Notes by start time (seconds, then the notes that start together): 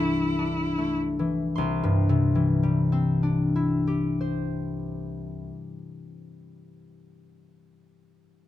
Already playing: C2 G2 E3 D4 E4 G4 C5 F5 G5 A5 C6
0.00 A3
0.39 D4
0.78 A3
1.19 E3
1.55 C2 C6
1.83 G2
2.09 C3
2.35 E3
2.63 G3
2.92 C4
3.23 D4
3.56 E4
3.87 G4
4.21 C5